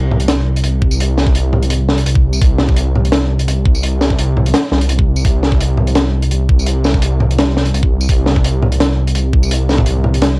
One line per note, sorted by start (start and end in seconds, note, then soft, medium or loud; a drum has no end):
0.00 0.62 C2 loud
0.11 mid tom medium
0.20 closed hi-hat medium
0.28 snare loud
0.28 closed hi-hat loud
0.56 closed hi-hat medium
0.64 1.33 C2 loud
0.64 closed hi-hat medium
0.82 kick loud
0.91 tambourine medium
1.00 closed hi-hat medium
1.18 snare medium
1.18 tambourine soft
1.27 kick medium
1.35 2.04 C2 loud
1.35 closed hi-hat medium
1.53 mid tom medium
1.63 closed hi-hat medium
1.70 closed hi-hat medium
1.89 snare medium
1.98 closed hi-hat medium
2.06 2.40 C2 loud
2.06 closed hi-hat medium
2.15 kick loud
2.33 tambourine medium
2.42 3.46 C2 loud
2.42 kick loud
2.42 closed hi-hat medium
2.58 snare medium
2.69 kick medium
2.76 closed hi-hat medium
2.95 mid tom medium
3.05 closed hi-hat soft
3.12 snare loud
3.12 closed hi-hat loud
3.39 closed hi-hat medium
3.48 4.17 C2 loud
3.48 closed hi-hat medium
3.66 kick loud
3.75 tambourine medium
3.83 closed hi-hat medium
4.01 snare medium
4.01 tambourine soft
4.10 kick medium
4.18 4.53 C2 loud
4.18 closed hi-hat medium
4.37 mid tom medium
4.46 closed hi-hat medium
4.54 snare loud
4.54 closed hi-hat medium
4.72 5.24 C2 loud
4.72 snare medium
4.81 closed hi-hat medium
4.89 closed hi-hat medium
4.99 kick loud
5.16 tambourine medium
5.25 6.30 C2 loud
5.25 kick loud
5.25 closed hi-hat medium
5.43 snare medium
5.52 kick medium
5.61 closed hi-hat medium
5.77 mid tom soft
5.87 closed hi-hat soft
5.95 snare loud
5.95 closed hi-hat medium
6.22 closed hi-hat medium
6.31 7.01 C2 loud
6.31 closed hi-hat medium
6.49 kick loud
6.59 tambourine medium
6.67 closed hi-hat medium
6.84 snare medium
6.84 tambourine soft
6.94 kick medium
7.02 7.72 C2 loud
7.02 closed hi-hat medium
7.20 mid tom medium
7.31 closed hi-hat medium
7.38 snare loud
7.38 closed hi-hat medium
7.57 snare medium
7.66 closed hi-hat soft
7.73 8.08 C2 loud
7.73 closed hi-hat medium
7.83 kick loud
8.01 tambourine medium
8.09 9.14 C2 loud
8.09 kick loud
8.09 closed hi-hat loud
8.26 snare medium
8.36 kick medium
8.44 closed hi-hat medium
8.62 mid tom medium
8.72 closed hi-hat medium
8.80 snare loud
8.80 closed hi-hat medium
9.07 closed hi-hat medium
9.15 9.85 C2 loud
9.15 closed hi-hat medium
9.33 kick loud
9.43 tambourine medium
9.51 closed hi-hat loud
9.69 snare medium
9.69 tambourine soft
9.71 snare soft
9.74 snare soft
9.76 kick medium
9.76 snare soft
9.76 mid tom medium
9.86 10.40 C2 loud
9.86 closed hi-hat medium
10.04 mid tom medium
10.14 closed hi-hat medium
10.22 snare loud
10.22 closed hi-hat medium